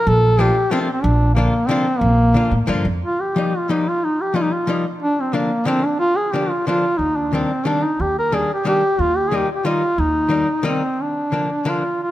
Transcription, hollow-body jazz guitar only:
0.39 F3 A3 A#3 D4 F4
0.71 F3 A3 A#3 D4 F4
1.36 D3 F3 A#3 D4 F4
1.69 D3 F3 A#3 D4 F4
2.34 D3 F3 A#3 D4 F4
2.67 D3 F3 A#3 D4 F4
3.36 F3 G3 A#3 D#4
3.69 F3 G3 A#3 D#4
4.34 F3 G3 A#3 D#4
4.67 F3 G3 A#3 D#4
5.33 D3 F3 A#3 D4
5.65 D3 F3 A#3 D4
6.33 D3 F3 A#3 D4
6.67 D3 F3 A#3 D4
7.33 D#3 G3 A#3 D4
7.65 D#3 G3 A#3 D4
8.32 D#3 G3 A#3 D4
8.65 D#3 G3 A#3 D4
9.31 D#3 G3 A#3 D#4
9.65 D#3 G3 A#3 D#4
10.29 D#3 G3 A#3 D#4
10.63 D#3 G3 A#3 D#4
11.32 D3 F3 A#3 D4
11.65 D3 F3 A#3 D4

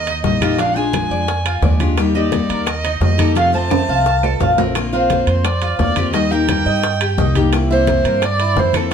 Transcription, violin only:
Already playing: D#5
0.25 D#5
0.59 F5
0.77 G#5
2.16 D5
2.68 D#5
3.03 D#5
3.37 F5
3.55 A5
4.93 C5
5.45 D5
5.78 D5
6.13 D#5
6.31 G5
7.72 C5
8.24 D5
8.59 C5
8.76 A4

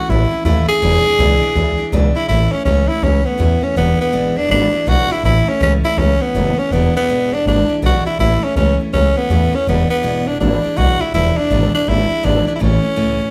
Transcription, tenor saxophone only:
Already playing: F#4
0.09 E4
0.45 E4
0.68 G#4
2.15 E4
2.28 E4
2.52 C#4
2.65 C#4
2.88 E4
3.04 C#4
3.25 B3
3.63 C#4
3.77 B3
4.01 B3
4.37 D4
4.51 D4
4.88 F#4
5.11 E4
5.25 E4
5.49 C#4
5.63 C#4
5.85 E4
5.99 C#4
6.21 B3
6.59 C#4
6.72 B3
6.96 B3
7.33 D4
7.47 D4
7.86 F#4
8.06 E4
8.20 E4
8.44 C#4
8.57 C#4
8.93 C#4
9.17 B3
9.55 C#4
9.69 B3
9.90 B3
10.27 D4
10.40 D4
10.77 F#4
11.00 E4
11.14 E4
11.37 D4
11.75 D4
11.89 E4
12.25 D4
12.48 D4
12.56 E4
12.62 C#4

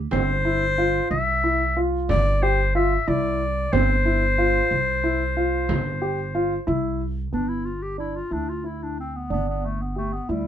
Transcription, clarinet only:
0.12 C5
1.11 E5
2.10 D5
2.43 C5
2.75 E5
3.08 D5
3.72 C5
7.33 D4
7.48 E4
7.65 F4
7.82 G4
7.99 E4
8.16 F4
8.33 D4
8.49 F4
8.66 E4
8.83 D4
9.00 C4
9.16 B3
9.32 B3
9.49 B3
9.65 A3
9.82 B3
9.97 A3
10.13 B3
10.30 G3

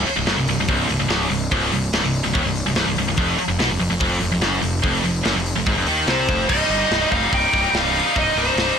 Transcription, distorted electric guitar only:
0.07 muted distorted electric guitar stroke
0.17 C2
0.27 F#2
0.37 C2
0.49 C2
0.60 C2
0.69 C2
0.90 C2
1.00 C2
1.09 C#2
1.30 C2
1.52 C2
1.73 C2
1.94 C#2
2.04 C2
2.24 C2
2.34 D#2
2.45 C2
2.66 C2
2.76 C2
2.88 C2
2.98 C2
3.08 C2
3.18 F2
3.38 muted distorted electric guitar stroke
3.48 F2
3.59 B2
3.69 F2
3.80 F2
3.90 F2
4.00 F2
4.20 F2
4.32 F2
4.42 F#2
4.61 F2
4.83 F2
5.04 F2
5.24 F#2
5.37 F2
5.56 F2
5.67 G#2
5.77 F2
5.88 D#3
6.08 C3
6.28 F2
6.48 G3 D#4
6.56 G3 D#4
6.63 G3 D#4
6.71 G3 D#4
6.78 G3 D#4
6.85 G3 D#4
6.93 G3 D#4
7.02 G3 D#4
7.09 G3 D#4
7.16 G3 D#4
7.24 G3 D#4
7.30 G3 D#4
7.38 G3 D#4
7.46 G3 D#4
7.53 G3 D#4
7.61 G3 D#4
7.70 G3 D#4
7.77 G3 D#4
7.83 G3 D#4
7.90 G3 D#4
7.99 G3 D#4
8.06 G3 D#4
8.15 G3 D#4
8.23 G3 D#4
8.30 G3 D#4
8.38 G3 D#4
8.46 G3 D#4
8.52 G3 D#4
8.61 G3 D#4
8.68 G3 D#4
8.76 G3

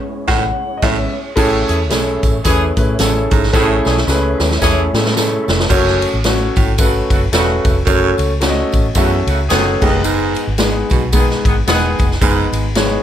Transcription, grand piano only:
Already playing: G#3 B3 C#4
0.28 F#5
0.77 D#5
0.83 G#3 B3 C#4 E5
1.36 A3 C#4 E4 G#4 A4
1.90 A3 C#4 E4 G#4 A4
2.45 A3 C#4 E4 G#4 B4
2.76 A3 C#4 E4 G#4 B4
2.98 A3 C#4 E4 G#4 A4
3.53 A3 C4 E4 G#4 A4
3.60 C#4
4.08 A3 C#4 E4 G#4 B4
4.61 A3 C#4 E4 G#4 A4
4.94 A3 C#4 E4 G#4 A4
5.16 A3 C#4 E4 G#4 A4
5.69 A3 C#4 F#4 A4 C#5
6.24 A3 C#4 F#4 A4 C#5
6.78 A3 C#4 F#4 A4 B4
7.32 A3 C#4 F#4 A4 B4
7.87 A3 C#4 F#4 A4 C#5
8.40 A3 C#4 F#4 A4 D5
8.49 D#5
8.96 A3 C#4 F#4 A4 E5
9.50 A3 C#4 F#4 A4 C#5
9.82 G#3 B3 D#4 G#4 A4
9.90 B4
10.58 G#3 B3 D#4 G#4 B4
11.13 G#3 B3 D#4 G#4 B4
11.67 G#3 B3 D#4 G#4 B4
12.22 G#3 B3 D#4 G#4 B4
12.76 G#3 B3 D#4 G#4 C#5

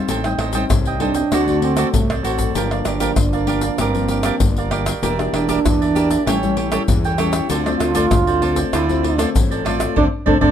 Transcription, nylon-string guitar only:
Already playing: G3 C4 D#4
0.08 A2
0.24 G3 C4 D#4
0.53 G3 C4 D#4
0.69 A2
1.00 G3 C4 D#4
1.31 D3 A3 C4 F#4
1.47 A3 C4 F#4
1.75 A3 C4 F#4
1.92 A2
2.23 A3 C4 F#4
2.55 G2 F3 A#3 D4
2.71 F3 A#3 D4
3.00 F3 A#3 D4
3.17 D3
3.46 F3 A#3 D4
3.78 G2
3.94 F3 A#3 D4
4.24 F3 A#3 D4
4.42 D3
4.71 F3 A#3 D4
5.03 E3 A#3 D4 G4
5.18 A#3 D4 G4
5.47 A#3 D4 G4
5.64 E3
5.95 A#3 D4 G4
6.27 A2 G3 C#4 E4
6.43 G3 C#4 E4
6.72 G3 C#4 E4
6.88 E3
7.18 G3 C#4 E4
7.50 D3 A3 C4 F4
7.66 A3 C4 F4
7.95 A3 C4 F4
8.12 A2
8.41 A3 C4 F4
8.74 D3
8.88 A3 C4 F4
9.17 A3 C4 F4
9.36 A2
9.66 A3 C4 F4
9.97 A3 C4 D4
10.26 A3 C4 D4
10.41 A3 C4 D4

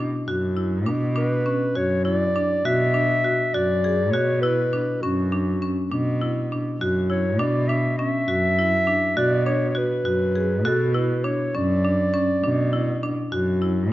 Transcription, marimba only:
Already playing: D4
0.28 F#4
0.56 E4
0.86 D4
1.16 D4
1.46 C#4
1.75 F#4
2.05 E4
2.36 D4
2.65 F#4
2.94 D4
3.24 F#4
3.54 F#4
3.84 G#4
4.14 F#4
4.43 E4
4.73 D4
5.03 C#4
5.32 D4
5.62 C#4
5.92 D4
6.21 E4
6.52 D4
6.81 F#4
7.10 E4
7.40 D4
7.69 D4
7.99 C#4
8.28 F#4
8.59 E4
8.87 D4
9.17 F#4
9.46 D4
9.75 F#4
10.05 F#4
10.36 G#4
10.65 F#4
10.94 E4
11.24 D4
11.55 C#4
11.85 D4
12.14 C#4
12.44 D4
12.73 E4
13.03 D4
13.32 F#4
13.62 E4

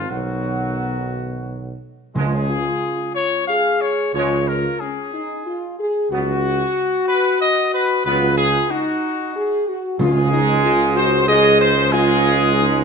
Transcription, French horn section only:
0.11 D#3 B3
2.15 C#4
2.48 F4
3.48 G#4
4.15 F4
4.80 C#4
5.12 D#4
5.45 F4
5.78 G#4
6.11 F#4
8.06 F4
8.70 D#4
9.35 G#4
9.67 F#4
9.99 F4
10.31 D#4
10.63 F4
10.95 F#4
11.27 G#4
11.92 F4
12.56 D#4

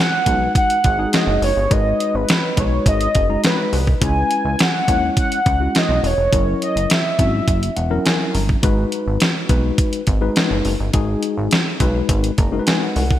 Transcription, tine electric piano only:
0.26 G#3 D#4 F#4 B4
0.98 G#3 D#4 F#4 G#4
1.70 G#3 D#4 F#4 B4
2.57 G#3 D#4 F#4 B4
3.29 G#3 D#4 F#4 A#5
4.01 G#3 C#4 E4 B4
4.88 G#3 C#4 E4 C#5
5.60 G#3 C#4 E4 F#4
6.32 F#3 C#4 E4 A#4
7.19 F#3 C#4 E4 F#4
7.76 F#5
7.90 F#3 C#4 E4 A#4
8.05 G#5
8.34 A#5
8.63 G#3 D#4 F#4 B4
9.49 G#3 D#4 F#4 B4
10.21 G#3 D#4 F#4 B4
10.93 G#3 D#4 F#4 G#4
11.80 G#3 D#4 F#4 B4
12.38 A#5
12.52 G#3 D#4 F#4 A#4
12.59 B4
12.67 G#5
12.82 F#5
12.96 F#5

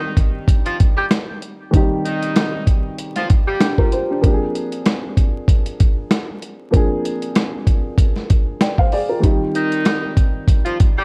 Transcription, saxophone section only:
Already playing: D#3 D#4
0.65 F3 F4
0.97 G3 G4
2.04 D#3 D#4
3.16 F3 F4
3.47 G3 G4
9.55 D#3 D#4
10.65 F3 F4
10.97 G3 G4

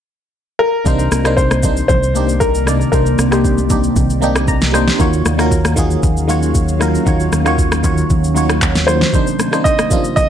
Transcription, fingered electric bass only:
0.86 C2
1.12 C2
1.89 C2
2.93 C2
3.19 C2
3.96 C2
5.00 D#2
5.26 D#2
6.03 D#2
7.07 D#2
7.33 D#2
8.10 D#2

